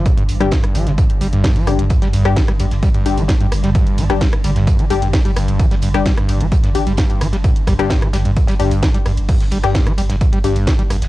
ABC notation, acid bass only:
X:1
M:4/4
L:1/16
Q:1/4=130
K:Cdor
V:1 name="Acid bass" clef=bass
C, G,, z G, G,,2 F, C, G,, z G, G,,2 F, C, G,, | z G, G,,2 F, G, G,, z G, G,,2 F, G, G,, z G, | G,,2 F, G, G,, z G, G,,2 F, G, G,, z G, G,,2 | F, G, G,, z G, G,,2 F, G, G,, z G, G,,2 F, G, |
G,, z G, G,,2 F, G, G,, z G, G,,2 F, G, G,, z | G,, z G, G,,2 F, G, G,, z G, G,,2 F, G, G,, z |]